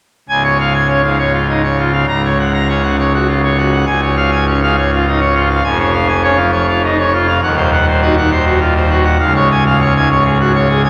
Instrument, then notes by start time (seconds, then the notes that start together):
pipe organ
0.29 C#1 C#2 G#5
0.44 C#5
0.60 F5
0.74 G#5
0.88 C#4 C#5
1.03 G#2 F5
1.19 C#5
1.33 F4
1.49 D#4
1.63 C#5
1.78 F4
1.93 F5
2.08 C#1 C#2 A#5
2.24 C#5
2.39 F#5
2.54 A#5
2.69 C#4 C#5
2.83 C#3 F#5
2.99 C#5
3.14 F#4
3.28 F4
3.44 C#5
3.58 F#4
3.72 F#5
3.86 C#1 C#2 G#5
4.02 C#5
4.17 F5
4.32 G#5
4.47 C#4 C#5
4.63 G#2 F5
4.78 C#5
4.93 F4
5.07 D#4
5.20 C#5
5.35 F4
5.50 F5
5.64 F1 F2 G#5
5.79 C#5
5.93 F5
6.08 G#5
6.23 C#4 C#5
6.36 F3 F5
6.52 C#5
6.67 F4
6.84 D#4
6.99 C#5
7.13 F4
7.28 F5
7.42 D#1 D#2 F#5
7.57 C5
7.72 F#5
7.88 C5
8.02 D#4 F#4
8.17 D#3 F#5
8.31 C5
8.46 F#4
8.61 F4
8.75 C5
8.90 F#4
9.04 F#5
9.19 C#1 C#2 F5
9.35 C#5
9.51 G#5
9.66 F5
9.80 C#5
9.96 G#2 G#5
10.11 C#5
10.25 G#4
10.40 F#4
10.55 C#5
10.69 G#4
10.84 G#5